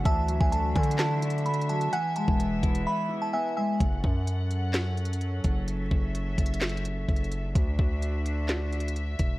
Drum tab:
HH |x-----x-----x-----x-x-x-x-----x-x-x-x-x-x-x--x--|x-----x-----x-----x--x--------------------------|x-----------x-----x-----x-----x-x-x-x-----x-----|x-----------x-----x-x-x-x-x-x-x-----x-x-x-x-----|
CP |------------------------x-----------------------|------------------------------------------------|------------------------x-----------------------|------------------------x-----------------------|
SD |------------------------o-----------------------|------------------------------------------------|------------------------o-----------------------|------------------------o-----------------------|
BD |o--------o--------o-----------------------------|---------o--------o-----------------------------|o-----o-----------------------------------o-----|------o-----------o-----------------o-----------|

HH |x-----------x-----x-----x-----x-x-x-x-----x-----|
CP |------------------------x-----------------------|
SD |------------------------o-----------------------|
BD |o-----o-----------------------------------o-----|